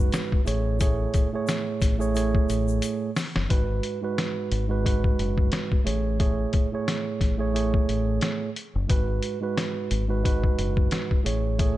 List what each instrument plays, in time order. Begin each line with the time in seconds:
Already playing: tine electric piano G#2 G#3 F#4 B4
0.13 snare, closed hi-hat, shaker
0.32 kick
0.44 fingered electric bass A1, tine electric piano A2 A3 G#4 C#5, closed hi-hat, shaker
0.79 tine electric piano A2 A3 G#4 C#5, kick, closed hi-hat, shaker
1.14 kick, closed hi-hat, shaker
1.32 tine electric piano A2 A3 G#4 C#5
1.47 snare, closed hi-hat, shaker
1.82 fingered electric bass A1, kick, snare, closed hi-hat, shaker
1.98 tine electric piano A2 A3 G#4 C#5, shaker
2.14 tine electric piano A2 A3 G#4 C#5, closed hi-hat, shaker
2.35 kick
2.49 fingered electric bass A1, closed hi-hat, shaker
2.68 shaker
2.82 closed hi-hat, shaker
3.16 snare, open hi-hat, shaker
3.36 fingered electric bass F#1, snare
3.48 fingered electric bass G#1, tine electric piano G#2 G#3 F#4 B4, kick, closed hi-hat
3.83 closed hi-hat
4.01 tine electric piano G#2 G#3 F#4 B4
4.18 snare, closed hi-hat
4.52 fingered electric bass G#1, closed hi-hat
4.68 tine electric piano G#2 G#3 F#4 B4
4.83 tine electric piano G#2 G#3 F#4 B4, kick, closed hi-hat
5.04 kick
5.19 fingered electric bass F#1, closed hi-hat
5.38 kick
5.52 snare, closed hi-hat
5.72 kick
5.83 fingered electric bass A1, tine electric piano A2 A3 G#4 C#5, closed hi-hat
6.18 tine electric piano A2 A3 G#4 C#5, kick, closed hi-hat
6.53 kick, closed hi-hat
6.72 tine electric piano A2 A3 G#4 C#5
6.88 snare, closed hi-hat
7.21 fingered electric bass A1, kick, snare, closed hi-hat
7.37 tine electric piano A2 A3 G#4 C#5
7.53 tine electric piano A2 A3 G#4 C#5, closed hi-hat
7.74 kick
7.89 fingered electric bass A1, closed hi-hat
8.21 snare, closed hi-hat
8.56 closed hi-hat
8.75 fingered electric bass F#1
8.87 fingered electric bass G#1, tine electric piano G#2 G#3 F#4 B4, kick, closed hi-hat
9.22 closed hi-hat
9.40 tine electric piano G#2 G#3 F#4 B4
9.57 snare, closed hi-hat
9.91 fingered electric bass G#1, closed hi-hat
10.07 tine electric piano G#2 G#3 F#4 B4
10.23 tine electric piano G#2 G#3 F#4 B4, kick, closed hi-hat
10.44 kick
10.59 fingered electric bass F#1, closed hi-hat
10.77 kick
10.91 snare, closed hi-hat
11.11 kick
11.23 fingered electric bass A1, tine electric piano A2 A3 G#4 C#5, closed hi-hat
11.58 tine electric piano A2 A3 G#4 C#5, kick, closed hi-hat